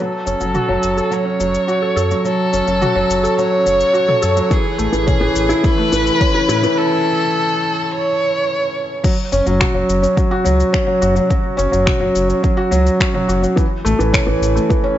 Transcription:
0.00 0.12 F#3 medium
0.00 1.14 A4 loud
0.26 0.35 F#1 medium
0.26 0.40 C#4 medium
0.26 shaker medium
0.40 0.58 F#1 medium
0.40 0.54 F#3 medium
0.40 shaker soft
0.55 0.68 F#4 medium
0.55 mid tom medium
0.55 shaker soft
0.68 0.78 F#1 loud
0.68 0.77 F#3 medium
0.83 1.01 F#1 medium
0.83 shaker medium
0.97 1.05 A4 medium
0.97 shaker soft
1.11 1.25 F#3 medium
1.11 2.27 C#5 loud
1.11 shaker soft
1.25 1.39 C#4 medium
1.40 1.57 F#1 medium
1.40 1.53 F#3 medium
1.40 shaker medium
1.54 shaker soft
1.68 1.81 F#4 medium
1.68 shaker soft
1.82 1.95 A4 medium
1.96 2.14 F#2 loud
1.96 2.10 A4 loud
1.96 shaker medium
2.11 2.19 F#3 medium
2.11 shaker soft
2.25 2.38 F#3 medium
2.25 3.38 A4 loud
2.25 shaker soft
2.53 2.62 F#1 loud
2.53 2.66 C#4 medium
2.53 shaker medium
2.67 2.85 F#1 medium
2.67 2.81 F#3 medium
2.67 shaker soft
2.81 2.95 F#4 medium
2.81 mid tom medium
2.81 shaker soft
2.95 3.04 F#1 loud
2.95 3.04 F#3 medium
3.10 3.27 F#1 medium
3.10 shaker medium
3.24 3.32 A4 medium
3.24 shaker soft
3.38 3.52 F#3 medium
3.38 4.53 C#5 loud
3.38 shaker soft
3.51 3.65 C#4 medium
3.66 3.84 F#1 medium
3.66 3.79 F#3 medium
3.66 shaker medium
3.80 shaker soft
3.93 4.07 F#4 medium
3.93 shaker soft
4.08 4.21 A4 medium
4.08 mid tom medium
4.22 4.41 F#2 loud
4.22 4.36 A4 loud
4.22 shaker medium
4.36 4.45 F#3 medium
4.36 shaker soft
4.50 4.64 E3 medium
4.50 5.66 G#4 medium
4.50 kick loud
4.50 shaker soft
4.78 4.88 A1 medium
4.78 4.92 A3 medium
4.78 shaker medium
4.92 5.11 A1 medium
4.92 5.07 E3 medium
4.92 shaker soft
5.06 5.21 C#4 medium
5.06 kick loud
5.06 mid tom medium
5.06 shaker soft
5.21 5.31 A1 loud
5.21 5.29 E3 medium
5.36 5.53 A1 medium
5.36 shaker medium
5.49 5.58 E4 loud
5.49 shaker soft
5.63 5.77 E3 medium
5.63 6.79 B4 loud
5.63 kick loud
5.63 shaker soft
5.78 5.92 A3 medium
5.92 6.10 A1 medium
5.92 6.06 E3 medium
5.92 shaker medium
6.07 shaker soft
6.20 6.34 C#4 medium
6.20 kick loud
6.20 shaker soft
6.35 6.47 E4 medium
6.49 6.67 A2 loud
6.49 6.62 E4 loud
6.49 shaker medium
6.63 6.72 E3 medium
6.63 shaker soft
6.77 7.93 A4 loud
7.91 9.04 C#5 loud
9.04 9.12 F#3 medium
9.04 kick loud
9.04 crash loud
9.04 shaker soft
9.32 9.41 F#1 loud
9.32 9.40 C#4 medium
9.32 shaker medium
9.46 9.64 F#1 medium
9.46 9.60 F#3 medium
9.46 shaker soft
9.60 9.74 F#4 medium
9.60 finger snap loud
9.60 kick loud
9.60 mid tom medium
9.60 shaker soft
9.74 9.84 F#1 loud
9.74 9.88 F#3 medium
9.89 10.07 F#1 loud
9.89 shaker medium
10.02 10.16 C#4 medium
10.02 shaker soft
10.16 10.30 F#3 medium
10.16 kick loud
10.16 shaker soft
10.31 10.45 F#4 loud
10.44 10.63 C#2 medium
10.44 10.53 F#3 medium
10.44 shaker medium
10.60 shaker soft
10.73 10.81 C#4 medium
10.73 finger snap medium
10.73 kick loud
10.73 shaker soft
10.87 11.01 F#3 loud
11.01 11.20 F#1 loud
11.01 11.15 F#4 medium
11.01 shaker medium
11.15 11.28 F#3 medium
11.15 shaker soft
11.29 11.38 F#3 medium
11.29 kick loud
11.29 shaker soft
11.57 11.68 F#1 loud
11.57 11.66 C#4 loud
11.57 shaker medium
11.71 11.91 F#1 medium
11.71 11.86 F#3 medium
11.71 shaker soft
11.86 12.00 F#4 medium
11.86 finger snap loud
11.86 kick loud
11.86 mid tom medium
11.86 shaker soft
12.00 12.10 F#1 loud
12.00 12.14 F#3 medium
12.15 12.33 F#1 loud
12.15 shaker medium
12.29 12.43 C#4 medium
12.29 shaker soft
12.43 12.57 F#3 medium
12.43 kick loud
12.43 shaker soft
12.57 12.71 F#4 loud
12.71 12.90 C#2 medium
12.71 12.80 F#3 loud
12.71 shaker medium
12.87 shaker soft
13.00 13.09 C#4 medium
13.00 finger snap loud
13.00 kick loud
13.00 shaker soft
13.14 13.28 F#3 loud
13.14 mid tom medium
13.28 13.46 F#1 medium
13.28 13.42 F#4 medium
13.28 shaker medium
13.42 13.56 F#3 medium
13.42 shaker soft
13.56 13.65 E3 medium
13.56 kick loud
13.56 shaker soft
13.85 13.94 A1 loud
13.85 13.93 A3 loud
13.85 shaker medium
13.99 14.17 A1 medium
13.99 14.13 E3 medium
13.99 shaker soft
14.13 14.27 C#4 medium
14.13 finger snap loud
14.13 kick loud
14.13 mid tom medium
14.13 shaker soft
14.26 14.36 A1 loud
14.26 14.41 E3 medium
14.42 14.59 A1 loud
14.42 shaker medium
14.55 14.69 A3 medium
14.55 shaker soft
14.69 14.83 E3 medium
14.69 kick loud
14.69 shaker soft
14.84 14.97 C#4 loud

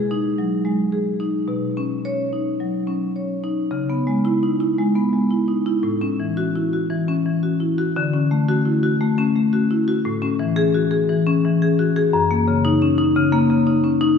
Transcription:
0.00 0.34 B2 medium
0.00 0.27 G#4 medium
0.11 0.54 D#4 medium
0.38 0.81 F#3 soft
0.65 1.08 G#3 soft
0.92 1.37 G#4 soft
1.20 1.48 D#4 soft
1.48 2.56 B2 medium
1.77 2.22 C#4 soft
2.05 2.49 C#5 medium
2.33 2.77 D#4 soft
2.60 3.04 F#3 soft
2.87 3.32 C#4 soft
3.16 3.61 C#5 soft
3.44 3.71 D#4 medium
3.71 4.75 C#3 medium
3.90 4.18 B3 soft
4.07 4.36 G#3 medium
4.25 4.53 E4 medium
4.43 4.61 D#4 soft
4.60 4.89 E4 medium
4.79 5.07 G#3 medium
4.95 5.24 B3 medium
5.13 5.41 G#3 soft
5.31 5.59 E4 soft
5.48 5.66 D#4 soft
5.66 5.84 E4 medium
5.83 6.88 A2 medium
6.01 6.31 C#4 medium
6.20 6.49 E3 soft
6.37 6.66 F#4 medium
6.56 6.73 E4 soft
6.73 7.02 F#4 soft
6.90 7.19 E3 medium
7.08 7.37 C#4 medium
7.26 7.54 E3 soft
7.43 7.71 F#4 soft
7.60 7.78 E4 soft
7.78 7.96 F#4 medium
7.96 8.98 D3 medium
8.14 8.42 C#4 medium
8.31 8.59 A3 medium
8.49 8.77 F#4 medium
8.66 8.84 E4 soft
8.83 9.12 F#4 medium
9.01 9.29 A3 medium
9.18 9.47 C#4 medium
9.36 9.64 A3 medium
9.53 9.81 F#4 medium
9.71 9.88 E4 medium
9.88 10.06 F#4 medium
10.05 11.07 A2 medium
10.22 10.50 C#4 medium
10.39 10.68 E3 medium
10.56 10.85 G#4 medium
10.75 10.92 F#4 medium
10.91 11.20 G#4 medium
11.09 11.38 E3 medium
11.26 11.55 C#4 medium
11.45 11.73 E3 medium
11.62 11.90 G#4 medium
11.79 11.97 F#4 medium
11.96 12.14 G#4 medium
12.13 13.13 F#2 medium
12.31 12.58 A#3 medium
12.48 12.75 C#3 medium
12.65 12.92 D#4 medium
12.82 12.99 C#4 medium
12.98 13.26 D#4 medium
13.16 13.44 C#3 medium
13.33 13.60 A#3 medium
13.50 13.78 C#3 medium
13.67 13.95 D#4 medium
13.84 14.01 C#4 medium
14.01 14.18 D#4 medium

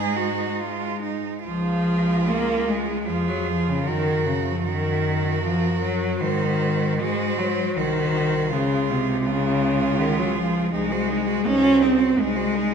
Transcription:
0.00 1.25 G#2 medium
0.00 0.59 G#3 medium
0.00 1.03 D#4 medium
0.00 0.18 G#4 medium
0.17 0.62 F#4 medium
0.60 1.24 G#3 medium
0.60 1.01 F4 medium
1.02 1.44 D#4 medium
1.44 3.09 C#2 medium
1.44 2.30 F3 medium
1.44 3.02 F4 medium
1.44 3.03 G#4 medium
2.28 2.70 A#3 medium
2.69 3.09 G#3 medium
3.06 3.86 F2 medium
3.06 3.30 F3 medium
3.06 3.88 F4 medium
3.06 3.85 G#4 medium
3.28 3.49 F#3 medium
3.47 3.70 F3 medium
3.68 3.88 C#3 medium
3.85 6.17 F#2 medium
3.85 4.27 D#3 medium
3.85 4.63 F#4 medium
3.85 4.63 A#4 medium
4.26 4.48 C#3 medium
4.47 4.67 F3 medium
4.64 5.43 D#3 medium
4.64 6.17 F#4 medium
4.64 6.18 A#4 medium
5.44 5.82 F3 medium
5.82 6.23 F#3 medium
6.21 7.74 G#2 medium
6.21 7.01 D#3 medium
6.21 6.98 F#4 medium
6.21 6.98 C5 medium
6.99 7.40 G#3 medium
6.99 7.76 F#4 medium
6.99 7.76 C5 medium
7.39 7.78 F#3 medium
7.77 8.54 C2 medium
7.77 8.51 D#3 medium
7.77 8.51 F#4 medium
7.77 8.55 C5 medium
8.49 10.73 C#2 medium
8.49 8.91 C#3 medium
8.49 9.24 F4 medium
8.49 9.26 G#4 medium
8.89 9.27 C3 medium
9.24 10.00 C#3 medium
9.24 10.70 F4 medium
9.24 10.71 G#4 medium
9.99 10.19 D#3 medium
10.18 10.37 F#3 medium
10.35 10.72 F3 medium
10.73 11.38 C2 medium
10.73 11.48 G#3 medium
10.73 10.93 D#4 medium
10.73 10.94 G#4 medium
10.91 11.10 F#4 soft
10.91 11.12 C5 medium
11.09 11.29 D#4 soft
11.09 11.30 G#4 soft
11.27 11.45 F#4 soft
11.27 11.46 C5 soft
11.45 12.10 C2 medium
11.45 11.84 C#4 loud
11.45 11.64 D#4 medium
11.45 11.66 G#4 soft
11.63 11.82 F#4 soft
11.63 11.84 C5 soft
11.80 12.21 C4 medium
11.80 12.00 D#4 soft
11.80 12.02 G#4 medium
11.99 12.17 F#4 soft
11.99 12.18 C5 soft
12.18 12.74 C2 medium
12.18 12.74 G#3 medium
12.18 12.37 D#4 medium
12.18 12.38 G#4 soft
12.36 12.56 F#4 soft
12.36 12.57 C5 medium
12.55 12.74 D#4 medium
12.55 12.74 G#4 medium

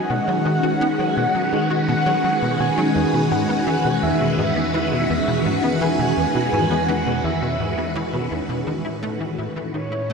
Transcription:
0.00 10.13 D#3 medium
0.00 10.13 G#3 medium
0.00 10.13 C#4 medium
0.00 10.13 F#4 medium
0.00 10.13 B4 medium
0.00 0.11 G#5 loud
0.10 0.20 B2 medium
0.10 1.88 F#5 loud
0.28 0.43 F#3 medium
0.46 0.61 D#3 medium
0.63 0.73 F#4 medium
0.81 0.96 B3 loud
0.99 1.14 F#3 medium
1.17 1.27 B2 medium
1.35 1.50 F#3 medium
1.53 1.68 D#3 medium
1.70 1.80 F#4 medium
1.88 1.94 B2 loud
1.88 2.61 F#5 loud
2.06 2.16 F#3 loud
2.24 2.30 F#3 medium
2.42 2.57 B2 medium
2.60 2.70 B2 medium
2.60 2.95 G#5 loud
2.78 2.84 F#3 loud
2.95 3.06 E2 medium
2.95 8.67 E2 medium
2.95 3.33 G#5 loud
3.13 3.28 B2 medium
3.31 3.46 G#2 medium
3.31 4.04 F#5 loud
3.49 3.59 B3 medium
3.67 3.82 E3 loud
3.85 4.00 B2 medium
4.03 4.13 E2 medium
4.03 4.38 E5 loud
4.21 4.36 B2 medium
4.38 4.53 G#2 medium
4.38 5.47 E5 loud
4.56 4.66 B3 medium
4.74 4.89 E3 loud
4.92 5.07 B2 medium
5.10 5.20 E2 medium
5.28 5.43 B2 medium
5.46 5.61 G#2 medium
5.46 5.83 F#5 loud
5.63 5.73 B3 medium
5.81 5.96 E3 loud
5.81 6.52 G#5 loud
5.99 6.14 B2 medium
6.17 6.27 E2 medium
6.35 6.50 B2 medium
6.53 6.68 G#2 medium
6.53 6.81 G#5 loud
6.71 6.81 B3 medium
6.81 6.90 G#5 medium
6.88 7.03 E3 loud
6.88 7.24 F#5 medium
7.06 7.21 B2 medium
7.24 7.34 E2 medium
7.24 7.91 E5 medium
7.42 7.57 B2 medium
7.60 7.75 G#2 medium
7.78 7.88 B3 medium
7.96 8.11 E3 loud
8.13 8.28 B2 medium
8.31 8.41 E2 medium
8.49 8.64 B2 medium
8.67 10.13 A2 medium
8.67 8.82 D#3 medium
8.85 8.95 E4 medium
9.03 9.18 A3 loud
9.20 9.36 E3 medium
9.38 9.48 A2 medium
9.56 9.71 E3 medium
9.74 9.89 D#3 medium
9.74 10.13 C#5 loud
9.92 10.02 E4 medium
10.10 10.13 A3 loud

